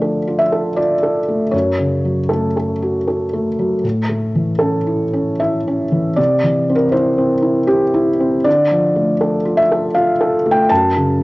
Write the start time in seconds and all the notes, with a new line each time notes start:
Already playing: D3 F3 A3 D5
0.02 A4
0.28 F4
0.39 E5
0.52 A4
0.76 F4 D5
1.03 A4
1.28 A3
1.51 F#2 C#5
1.79 C#3
2.05 F#3
2.29 A3 A4
2.57 A4
2.82 F#4
3.08 A4
3.33 A3
3.59 F#3
3.84 A2
4.09 A3
4.35 E3
4.59 C#4 A4
4.87 E4
5.13 C#4
5.40 E4 E5
5.68 C#4
5.92 E3
6.16 C3 D5
6.43 E3
6.69 C4
6.75 A#4
6.92 E4 C5
7.18 C4
7.42 E4
7.67 C4 G4
7.94 E4
8.20 C4
8.44 D3 D5
8.71 F3
8.96 A3
9.21 A4
9.45 F4
9.57 E5
9.72 A4
9.95 F4 F5
10.21 A4
10.46 A3
10.51 G5
10.69 F#2 A5
10.96 C#3